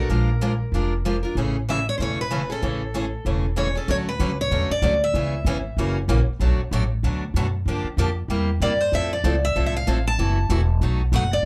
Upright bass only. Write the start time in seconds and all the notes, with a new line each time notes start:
0.09 A#1
0.72 F1
1.35 A1
1.99 E1
2.62 A1
3.25 E1
3.88 D2
4.19 C#2
4.51 E2
4.70 muted upright bass stroke
4.82 D2
5.14 C#2
5.45 G#1
5.77 F#1
6.08 A#1
6.27 muted upright bass stroke
6.39 B1
6.58 muted upright bass stroke
6.71 A1
7.03 D2
7.34 F#2
7.65 G2
7.84 muted upright bass stroke
7.97 F2
8.28 E2
8.60 G2
8.92 F2
9.24 C#2
9.56 C2
9.87 A1
10.18 F#1
10.49 E1
10.81 B1
11.12 F#1